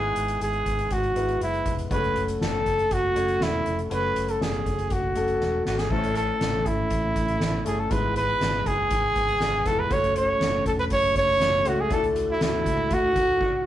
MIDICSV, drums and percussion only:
0, 0, Header, 1, 2, 480
1, 0, Start_track
1, 0, Key_signature, 3, "minor"
1, 0, Tempo, 500000
1, 1833, Time_signature, 4, 2, 24, 8
1, 13115, End_track
2, 0, Start_track
2, 0, Title_t, "Drums"
2, 152, Note_on_c, 9, 42, 69
2, 248, Note_off_c, 9, 42, 0
2, 271, Note_on_c, 9, 42, 51
2, 367, Note_off_c, 9, 42, 0
2, 397, Note_on_c, 9, 42, 62
2, 493, Note_off_c, 9, 42, 0
2, 510, Note_on_c, 9, 42, 27
2, 606, Note_off_c, 9, 42, 0
2, 632, Note_on_c, 9, 36, 71
2, 636, Note_on_c, 9, 42, 63
2, 728, Note_off_c, 9, 36, 0
2, 732, Note_off_c, 9, 42, 0
2, 755, Note_on_c, 9, 42, 38
2, 851, Note_off_c, 9, 42, 0
2, 869, Note_on_c, 9, 42, 79
2, 873, Note_on_c, 9, 36, 72
2, 965, Note_off_c, 9, 42, 0
2, 969, Note_off_c, 9, 36, 0
2, 991, Note_on_c, 9, 42, 28
2, 1087, Note_off_c, 9, 42, 0
2, 1113, Note_on_c, 9, 42, 55
2, 1209, Note_off_c, 9, 42, 0
2, 1232, Note_on_c, 9, 42, 38
2, 1328, Note_off_c, 9, 42, 0
2, 1358, Note_on_c, 9, 42, 64
2, 1454, Note_off_c, 9, 42, 0
2, 1474, Note_on_c, 9, 42, 29
2, 1570, Note_off_c, 9, 42, 0
2, 1590, Note_on_c, 9, 36, 92
2, 1591, Note_on_c, 9, 42, 62
2, 1686, Note_off_c, 9, 36, 0
2, 1687, Note_off_c, 9, 42, 0
2, 1716, Note_on_c, 9, 42, 47
2, 1812, Note_off_c, 9, 42, 0
2, 1832, Note_on_c, 9, 36, 102
2, 1833, Note_on_c, 9, 42, 80
2, 1928, Note_off_c, 9, 36, 0
2, 1929, Note_off_c, 9, 42, 0
2, 1960, Note_on_c, 9, 42, 30
2, 2056, Note_off_c, 9, 42, 0
2, 2072, Note_on_c, 9, 42, 71
2, 2168, Note_off_c, 9, 42, 0
2, 2191, Note_on_c, 9, 42, 51
2, 2287, Note_off_c, 9, 42, 0
2, 2316, Note_on_c, 9, 38, 100
2, 2412, Note_off_c, 9, 38, 0
2, 2554, Note_on_c, 9, 36, 63
2, 2555, Note_on_c, 9, 42, 59
2, 2650, Note_off_c, 9, 36, 0
2, 2651, Note_off_c, 9, 42, 0
2, 2678, Note_on_c, 9, 42, 39
2, 2774, Note_off_c, 9, 42, 0
2, 2793, Note_on_c, 9, 42, 74
2, 2796, Note_on_c, 9, 36, 78
2, 2889, Note_off_c, 9, 42, 0
2, 2892, Note_off_c, 9, 36, 0
2, 3034, Note_on_c, 9, 42, 58
2, 3130, Note_off_c, 9, 42, 0
2, 3151, Note_on_c, 9, 42, 40
2, 3247, Note_off_c, 9, 42, 0
2, 3270, Note_on_c, 9, 38, 88
2, 3366, Note_off_c, 9, 38, 0
2, 3512, Note_on_c, 9, 42, 60
2, 3608, Note_off_c, 9, 42, 0
2, 3636, Note_on_c, 9, 42, 42
2, 3732, Note_off_c, 9, 42, 0
2, 3754, Note_on_c, 9, 42, 85
2, 3850, Note_off_c, 9, 42, 0
2, 3995, Note_on_c, 9, 42, 73
2, 4091, Note_off_c, 9, 42, 0
2, 4113, Note_on_c, 9, 42, 46
2, 4209, Note_off_c, 9, 42, 0
2, 4238, Note_on_c, 9, 38, 96
2, 4334, Note_off_c, 9, 38, 0
2, 4351, Note_on_c, 9, 42, 30
2, 4447, Note_off_c, 9, 42, 0
2, 4473, Note_on_c, 9, 36, 70
2, 4477, Note_on_c, 9, 42, 60
2, 4569, Note_off_c, 9, 36, 0
2, 4573, Note_off_c, 9, 42, 0
2, 4595, Note_on_c, 9, 42, 37
2, 4691, Note_off_c, 9, 42, 0
2, 4707, Note_on_c, 9, 42, 75
2, 4712, Note_on_c, 9, 36, 84
2, 4803, Note_off_c, 9, 42, 0
2, 4808, Note_off_c, 9, 36, 0
2, 4949, Note_on_c, 9, 42, 59
2, 5045, Note_off_c, 9, 42, 0
2, 5065, Note_on_c, 9, 42, 35
2, 5161, Note_off_c, 9, 42, 0
2, 5188, Note_on_c, 9, 38, 43
2, 5284, Note_off_c, 9, 38, 0
2, 5427, Note_on_c, 9, 38, 81
2, 5523, Note_off_c, 9, 38, 0
2, 5547, Note_on_c, 9, 38, 69
2, 5643, Note_off_c, 9, 38, 0
2, 5666, Note_on_c, 9, 49, 83
2, 5669, Note_on_c, 9, 36, 92
2, 5762, Note_off_c, 9, 49, 0
2, 5765, Note_off_c, 9, 36, 0
2, 5795, Note_on_c, 9, 42, 46
2, 5891, Note_off_c, 9, 42, 0
2, 5906, Note_on_c, 9, 42, 74
2, 6002, Note_off_c, 9, 42, 0
2, 6153, Note_on_c, 9, 38, 101
2, 6154, Note_on_c, 9, 42, 65
2, 6249, Note_off_c, 9, 38, 0
2, 6250, Note_off_c, 9, 42, 0
2, 6391, Note_on_c, 9, 36, 71
2, 6393, Note_on_c, 9, 42, 64
2, 6487, Note_off_c, 9, 36, 0
2, 6489, Note_off_c, 9, 42, 0
2, 6628, Note_on_c, 9, 42, 80
2, 6633, Note_on_c, 9, 36, 78
2, 6724, Note_off_c, 9, 42, 0
2, 6729, Note_off_c, 9, 36, 0
2, 6872, Note_on_c, 9, 36, 75
2, 6872, Note_on_c, 9, 42, 60
2, 6968, Note_off_c, 9, 36, 0
2, 6968, Note_off_c, 9, 42, 0
2, 6991, Note_on_c, 9, 42, 42
2, 7087, Note_off_c, 9, 42, 0
2, 7109, Note_on_c, 9, 38, 91
2, 7117, Note_on_c, 9, 42, 72
2, 7205, Note_off_c, 9, 38, 0
2, 7213, Note_off_c, 9, 42, 0
2, 7351, Note_on_c, 9, 42, 64
2, 7447, Note_off_c, 9, 42, 0
2, 7592, Note_on_c, 9, 36, 103
2, 7592, Note_on_c, 9, 42, 76
2, 7688, Note_off_c, 9, 36, 0
2, 7688, Note_off_c, 9, 42, 0
2, 7832, Note_on_c, 9, 42, 76
2, 7928, Note_off_c, 9, 42, 0
2, 8075, Note_on_c, 9, 38, 101
2, 8076, Note_on_c, 9, 42, 76
2, 8171, Note_off_c, 9, 38, 0
2, 8172, Note_off_c, 9, 42, 0
2, 8314, Note_on_c, 9, 36, 73
2, 8316, Note_on_c, 9, 42, 72
2, 8410, Note_off_c, 9, 36, 0
2, 8412, Note_off_c, 9, 42, 0
2, 8550, Note_on_c, 9, 42, 91
2, 8554, Note_on_c, 9, 36, 89
2, 8646, Note_off_c, 9, 42, 0
2, 8650, Note_off_c, 9, 36, 0
2, 8791, Note_on_c, 9, 42, 67
2, 8792, Note_on_c, 9, 36, 78
2, 8887, Note_off_c, 9, 42, 0
2, 8888, Note_off_c, 9, 36, 0
2, 8911, Note_on_c, 9, 42, 40
2, 9007, Note_off_c, 9, 42, 0
2, 9028, Note_on_c, 9, 38, 90
2, 9035, Note_on_c, 9, 42, 71
2, 9124, Note_off_c, 9, 38, 0
2, 9131, Note_off_c, 9, 42, 0
2, 9270, Note_on_c, 9, 36, 94
2, 9270, Note_on_c, 9, 42, 65
2, 9271, Note_on_c, 9, 38, 38
2, 9366, Note_off_c, 9, 36, 0
2, 9366, Note_off_c, 9, 42, 0
2, 9367, Note_off_c, 9, 38, 0
2, 9510, Note_on_c, 9, 42, 83
2, 9511, Note_on_c, 9, 36, 116
2, 9606, Note_off_c, 9, 42, 0
2, 9607, Note_off_c, 9, 36, 0
2, 9636, Note_on_c, 9, 42, 47
2, 9732, Note_off_c, 9, 42, 0
2, 9751, Note_on_c, 9, 42, 81
2, 9847, Note_off_c, 9, 42, 0
2, 9993, Note_on_c, 9, 38, 100
2, 9994, Note_on_c, 9, 42, 77
2, 10089, Note_off_c, 9, 38, 0
2, 10090, Note_off_c, 9, 42, 0
2, 10231, Note_on_c, 9, 36, 80
2, 10234, Note_on_c, 9, 42, 68
2, 10327, Note_off_c, 9, 36, 0
2, 10330, Note_off_c, 9, 42, 0
2, 10467, Note_on_c, 9, 42, 83
2, 10472, Note_on_c, 9, 36, 92
2, 10563, Note_off_c, 9, 42, 0
2, 10568, Note_off_c, 9, 36, 0
2, 10710, Note_on_c, 9, 36, 84
2, 10711, Note_on_c, 9, 42, 68
2, 10806, Note_off_c, 9, 36, 0
2, 10807, Note_off_c, 9, 42, 0
2, 10947, Note_on_c, 9, 38, 90
2, 10954, Note_on_c, 9, 42, 73
2, 11043, Note_off_c, 9, 38, 0
2, 11050, Note_off_c, 9, 42, 0
2, 11188, Note_on_c, 9, 42, 66
2, 11284, Note_off_c, 9, 42, 0
2, 11429, Note_on_c, 9, 42, 88
2, 11430, Note_on_c, 9, 36, 106
2, 11525, Note_off_c, 9, 42, 0
2, 11526, Note_off_c, 9, 36, 0
2, 11557, Note_on_c, 9, 42, 49
2, 11653, Note_off_c, 9, 42, 0
2, 11671, Note_on_c, 9, 42, 78
2, 11767, Note_off_c, 9, 42, 0
2, 11913, Note_on_c, 9, 38, 108
2, 11914, Note_on_c, 9, 42, 77
2, 12009, Note_off_c, 9, 38, 0
2, 12010, Note_off_c, 9, 42, 0
2, 12152, Note_on_c, 9, 36, 83
2, 12156, Note_on_c, 9, 42, 67
2, 12248, Note_off_c, 9, 36, 0
2, 12252, Note_off_c, 9, 42, 0
2, 12390, Note_on_c, 9, 42, 90
2, 12393, Note_on_c, 9, 36, 91
2, 12486, Note_off_c, 9, 42, 0
2, 12489, Note_off_c, 9, 36, 0
2, 12631, Note_on_c, 9, 36, 92
2, 12632, Note_on_c, 9, 42, 62
2, 12727, Note_off_c, 9, 36, 0
2, 12728, Note_off_c, 9, 42, 0
2, 12871, Note_on_c, 9, 36, 90
2, 12871, Note_on_c, 9, 49, 77
2, 12967, Note_off_c, 9, 36, 0
2, 12967, Note_off_c, 9, 49, 0
2, 13115, End_track
0, 0, End_of_file